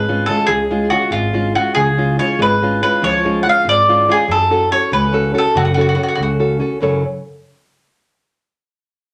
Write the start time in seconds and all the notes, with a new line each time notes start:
Already playing: G#1 B4
0.08 G#3 C#4 F4
0.26 G#3 C#4 F4 A4
0.47 C#2 G#3 G#4
0.71 G#3 C#4 F4
0.90 G#3 C#4 F4 F#4
1.11 G#1 G#3 F4
1.33 G#3 C#4 F4
1.55 G#3 C#4 F4 F#4
1.75 C#2 C#3 G#4
1.98 G#3 C#4 F4
2.19 G#3 C#4 F4 C#5
2.39 G#1 G#3 B4
2.62 G#3 C#4 F4
2.83 G#3 C#4 F4 B4
3.02 C#2 F3 C#5
3.25 G#3 C#4 F4
3.43 G#3 C#4 F4 F#5
3.49 F5
3.65 G#1 G#3 D5
3.89 G#3 C#4 F4
4.08 G#3 C#4 F4 G#4
4.28 F#2 F#3 A4
4.51 C#4 F#4 A4
4.71 C#4 F#4 A4 C#5
4.92 C#2 C#3 B4
5.13 C#4 F#4 A4
5.34 C#4 F#4 A4
5.38 A4
5.55 F#2 C#3 F#4
5.65 F#4
5.74 C#4 F#4 A4
5.81 F#4
5.89 F#4
5.95 C#4 F#4 A4
6.03 F#4
6.08 F#4
6.15 C#2 C#3 F#4
6.23 F#4
6.39 C#4 F#4 A4
6.60 C#4 F#4 A4
6.81 F#1 F#2 C#3 F#3 C#4 A4 C#5